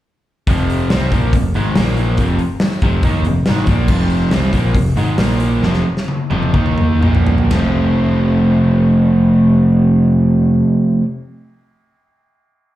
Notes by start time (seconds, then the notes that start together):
0.47 F1 F2 C3 F3, kick, open hi-hat
0.70 open hi-hat
0.90 C2 C3 G3 C4, snare, open hi-hat
1.12 A#1 A#2 F3 A#3, kick, open hi-hat
1.33 F1 F2 C3, kick, open hi-hat
1.54 G#1 G#2 D#3 G#3, open hi-hat
1.75 A#1 A#2 F3 A#3, snare, open hi-hat
1.97 open hi-hat
2.17 F1 F2 C3 F3, kick, open hi-hat
2.39 open hi-hat
2.60 snare, open hi-hat
2.82 F1 F2 C3 F3, kick, open hi-hat
3.03 D#2 D#3 A#3 D#4, kick, open hi-hat
3.25 F1 F2 C3, open hi-hat
3.46 G#1 G#2 D#3 G#3, snare, open hi-hat
3.67 A#1 A#2 F3 A#3, kick, open hi-hat
3.88 F1 F2 C3 F3, kick, crash
4.10 open hi-hat
4.31 C2 C3 G3 C4, snare, open hi-hat
4.53 A#1 A#2 F3 A#3, kick, open hi-hat
4.74 F1 F2 C3, kick, open hi-hat
4.96 G#1 G#2 D#3 G#3, open hi-hat
5.18 A#1 A#2 F3 A#3, snare, open hi-hat
5.40 open hi-hat
5.62 F1 F2 C3 F3, snare
5.73 snare
5.97 snare
6.08 high tom
6.31 F1 F2 C3 F3, high tom
6.43 mid tom
6.54 D#2 D#3 A#3 D#4, kick
6.66 mid tom
6.78 mid tom
7.02 A#1 A#2 F3 A#3, mid tom
7.15 floor tom
7.27 floor tom
7.38 floor tom
7.51 F1 F2 C3 F3 A3, snare, ride bell
7.55 C4 F4